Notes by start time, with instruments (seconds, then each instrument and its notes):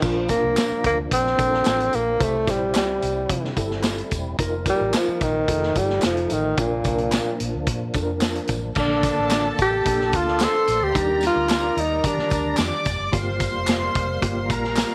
Already playing: tonewheel organ F3
0.02 fingered electric bass A#1, reed electric piano A#2 D4 F4 A#4, tenor saxophone F3, tonewheel organ A#3 D4, kick, tambourine, splash
0.29 tenor saxophone A#3, reed electric piano C4 F4 A#4, kick, snare, closed hi-hat, tambourine
0.36 reed electric piano D4
0.44 fingered electric bass C2
0.57 snare, clap, closed hi-hat, tambourine
0.71 muted fingered electric bass stroke
0.84 fingered electric bass D2, tenor saxophone A#3, kick, closed hi-hat
1.11 fingered electric bass A#1, tenor saxophone C4, kick, closed hi-hat, tambourine
1.26 snare
1.37 fingered electric bass A#1, reed electric piano D4 F4 A4, kick, closed hi-hat, tambourine
1.53 snare
1.65 fingered electric bass A1, snare, clap, closed hi-hat, tambourine
1.80 closed hi-hat
1.93 fingered electric bass A#1, tenor saxophone A#3, closed hi-hat, tambourine
2.19 fingered electric bass C2, reed electric piano C3 E4 G4 C5, tonewheel organ G3 C4 E4, tenor saxophone A3, kick, closed hi-hat, tambourine
2.47 fingered electric bass A#1, tenor saxophone G3, reed electric piano E4 G4 C5, kick, snare, closed hi-hat, tambourine
2.75 fingered electric bass C2, tenor saxophone G3, snare, clap, closed hi-hat, tambourine
3.02 fingered electric bass C2, closed hi-hat, tambourine
3.29 fingered electric bass C3, kick, closed hi-hat
3.44 snare
3.56 fingered electric bass G1, reed electric piano E4 G4 A4, kick, closed hi-hat, tambourine
3.71 snare
3.83 snare, clap, closed hi-hat, tambourine
3.98 closed hi-hat
4.11 fingered electric bass E1, kick, closed hi-hat, tambourine
4.39 fingered electric bass F1, tonewheel organ F3 A#3 D#4, reed electric piano D#4 F4 A#4, kick, closed hi-hat, tambourine
4.66 tenor saxophone G3, reed electric piano D#4 F4 A#4, kick, snare, closed hi-hat, tambourine
4.81 fingered electric bass A1
4.93 tenor saxophone F3, snare, clap, closed hi-hat, tambourine
5.08 muted fingered electric bass stroke
5.21 fingered electric bass A#1, tenor saxophone D#3, kick, closed hi-hat, tambourine
5.47 fingered electric bass F1, tonewheel organ F3 A3, reed electric piano D#4 F4 A4, kick, closed hi-hat
5.63 snare
5.75 fingered electric bass G1, tenor saxophone G3, reed electric piano D#4 F4 A4, kick, closed hi-hat, tambourine
5.89 snare
6.02 fingered electric bass F1, tenor saxophone F3, snare, clap, closed hi-hat, tambourine
6.17 closed hi-hat
6.30 fingered electric bass A1, tenor saxophone D#3, closed hi-hat, tambourine
6.57 fingered electric bass A#1, reed electric piano A#2 D4 F4 A#4, tenor saxophone A#2, tonewheel organ A#3 D4, kick, closed hi-hat, tambourine
6.84 fingered electric bass C2, reed electric piano D4 F4 A#4, kick, closed hi-hat, tambourine
6.98 closed hi-hat
7.12 snare, clap, closed hi-hat, tambourine
7.40 fingered electric bass A#1, closed hi-hat
7.55 fingered electric bass D2
7.67 fingered electric bass A#2, kick, closed hi-hat
7.94 fingered electric bass F2, reed electric piano D4 F4 A4, kick, closed hi-hat, tambourine
8.02 reed electric piano A#4
8.21 snare, clap, closed hi-hat, tambourine
8.35 closed hi-hat
8.47 fingered electric bass A1, kick, closed hi-hat, tambourine
8.75 fingered electric bass A#1, reed electric piano D3 A#3 D4 A4, tonewheel organ A#3 A4 D5, violin section A4 A5, kick, crash, tambourine
8.79 tenor saxophone D4
9.03 kick, snare, closed hi-hat, tambourine
9.18 fingered electric bass A1
9.30 snare, clap, closed hi-hat, tambourine
9.58 fingered electric bass A1, tenor saxophone G4, kick, closed hi-hat, tambourine
9.85 fingered electric bass A#1, reed electric piano A#3 D4 A4, kick, closed hi-hat, tambourine
10.01 snare
10.13 fingered electric bass D2, tenor saxophone F4, kick, closed hi-hat, tambourine
10.28 snare
10.40 violin section C5 C6, snare, clap, closed hi-hat, tambourine
10.44 tenor saxophone A4
10.67 fingered electric bass A#1, closed hi-hat, tambourine
10.81 fingered electric bass D2, tenor saxophone G4
10.95 fingered electric bass D#2, reed electric piano G3 D4 D#4 G4, tonewheel organ G3, violin section A#4 A#5, kick, closed hi-hat, tambourine
11.21 snare, closed hi-hat, tambourine
11.26 tenor saxophone F4
11.36 fingered electric bass D2
11.49 snare, clap, closed hi-hat, tambourine
11.77 fingered electric bass D#2, tenor saxophone D#4, closed hi-hat
12.04 reed electric piano D#3 D4 G4, tenor saxophone D4, kick, closed hi-hat, tambourine
12.18 muted fingered electric bass stroke, snare
12.30 fingered electric bass D2, kick, closed hi-hat, tambourine
12.57 fingered electric bass F2, violin section D5 D6, snare, clap, closed hi-hat, tambourine
12.85 fingered electric bass F1, kick, closed hi-hat, tambourine
13.00 fingered electric bass F#1
13.12 fingered electric bass G1, reed electric piano G2 A#3 F4 G4, tonewheel organ A#3 F5, violin section C5 C6, kick, closed hi-hat, tambourine
13.40 kick, closed hi-hat, tambourine
13.55 fingered electric bass F1
13.67 snare, clap, closed hi-hat, tambourine
13.95 fingered electric bass F1, kick, closed hi-hat
14.22 fingered electric bass G1, reed electric piano A#3 F4 G4, kick, closed hi-hat
14.50 fingered electric bass A#1, violin section A#4 A#5, kick, closed hi-hat, tambourine
14.64 snare
14.76 snare, clap, closed hi-hat, tambourine